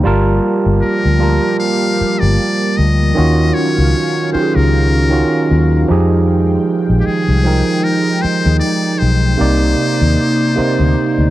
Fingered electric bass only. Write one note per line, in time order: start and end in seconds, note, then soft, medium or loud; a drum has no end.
0.05 0.38 G1 medium
0.66 0.80 G1 medium
0.84 muted fingered electric bass stroke soft
1.05 1.38 D2 medium
2.01 muted fingered electric bass stroke medium
2.23 2.37 G1 loud
2.79 3.11 D2 medium
3.18 3.51 D#2 medium
3.78 3.92 C#2 medium
4.35 muted fingered electric bass stroke soft
4.56 5.22 C#2 loud
5.51 5.84 D#2 loud
5.90 6.57 F2 medium
6.90 7.04 A#1 medium
7.07 muted fingered electric bass stroke soft
7.29 7.61 C2 medium
8.24 muted fingered electric bass stroke medium
8.46 8.60 D#2 loud
9.02 9.35 B1 medium
9.41 9.73 C2 loud
10.02 10.16 D#2 loud
10.58 muted fingered electric bass stroke soft
10.80 10.94 D2 medium
11.18 11.30 D2 medium